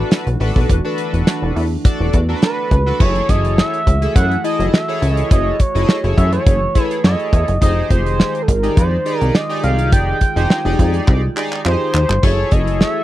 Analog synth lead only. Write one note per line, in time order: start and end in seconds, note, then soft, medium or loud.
2.43 3.02 B4 medium
3.01 3.31 C#5 medium
3.29 3.57 D#5 medium
3.58 4.12 E5 loud
4.16 4.42 F#5 medium
4.44 4.71 D#5 loud
4.73 5.12 E5 medium
5.12 5.27 D#5 medium
5.31 5.61 D#5 loud
5.60 6.17 C#5 medium
6.18 6.32 E5 medium
6.33 6.83 C#5 loud
6.83 7.00 B4 loud
7.04 7.58 D#5 medium
7.62 7.89 D#5 loud
7.91 8.44 C5 loud
8.42 8.50 A4 medium
8.49 8.76 A#4 medium
8.77 9.19 C5 loud
9.19 9.36 A#4 loud
9.35 9.63 D#5 loud
9.64 9.91 F5 loud
9.93 11.04 G5 loud
11.67 12.25 C5 medium
12.23 12.54 C#5 loud
12.52 12.81 D#5 medium
12.81 13.04 E5 loud